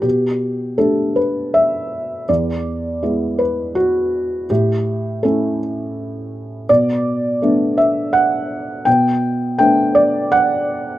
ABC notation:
X:1
M:3/4
L:1/8
Q:1/4=82
K:Bm
V:1 name="Felt piano"
G2 A B e2 | d3 B F2 | G2 A z3 | d3 e f2 |
g2 g d f2 |]
V:2 name="Felt piano"
B,,2 [A,DG]4 | E,,2 [^G,B,E]4 | A,,2 [A,CE]4 | B,,2 [A,B,D]4 |
B,,2 [A,B,D]4 |]